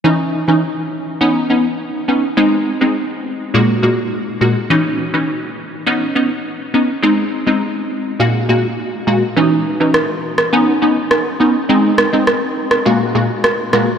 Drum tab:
SD |----------------|----------------|----------------|----------------|

SD |----r--r----r---|--r-r--r----r-r-|